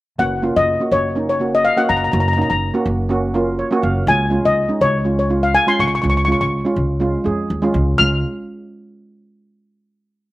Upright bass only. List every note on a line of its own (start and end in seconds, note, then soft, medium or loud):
0.19 0.47 F#1 medium
0.56 0.75 F#1 medium
0.91 1.66 F#1 medium
1.90 2.08 F#1 medium
2.13 2.42 F#1 medium
2.50 2.69 F#1 medium
2.86 3.60 F#1 medium
3.83 4.02 F#1 medium
4.07 4.36 C#2 medium
4.45 4.64 C#2 medium
4.81 5.55 C#2 medium
5.79 5.98 C#2 medium
6.04 6.32 C#2 medium
6.41 6.59 C#2 medium
6.76 7.13 C#2 medium
7.26 7.47 F2 medium
7.50 7.71 D#2 medium
7.74 7.96 C#2 medium
7.99 8.21 C#2 medium